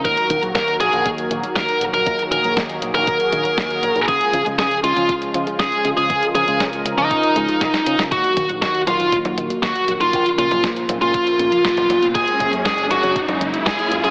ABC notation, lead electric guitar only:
X:1
M:4/4
L:1/16
Q:1/4=119
K:Ebdor
V:1 name="Lead electric guitar"
B3 z B z A2 z4 B2 z B- | B z B2 z3 B8 z | A3 z A z F2 z4 A2 z A- | A z A2 z3 E8 z |
G3 z G z F2 z4 G2 z F- | F z F2 z3 F8 z | A3 z A z G2 z4 A2 z A |]